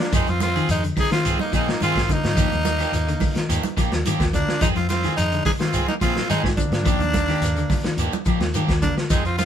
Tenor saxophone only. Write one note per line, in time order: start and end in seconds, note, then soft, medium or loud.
0.00 0.13 D4 medium
0.15 0.31 D#4 loud
0.29 0.42 F4 medium
0.42 0.68 F4 loud
0.71 0.83 D#4 medium
1.00 1.12 G#4 loud
1.12 1.38 F4 medium
1.40 1.52 D#4 medium
1.55 1.80 D#4 medium
1.83 2.14 F4 loud
2.12 3.79 D#4 loud
4.34 4.60 D4 medium
4.62 4.68 D#4 loud
4.76 4.89 F4 medium
4.89 5.15 F4 medium
5.17 5.43 D#4 loud
5.46 5.52 G#4 loud
5.61 5.86 F4 medium
5.88 5.94 D#4 medium
6.02 6.28 F4 medium
6.30 6.43 D#4 loud
6.58 8.22 D4 loud
8.83 8.95 D4 medium
9.11 9.24 D#4 medium
9.26 9.38 F4 medium
9.38 9.45 F4 medium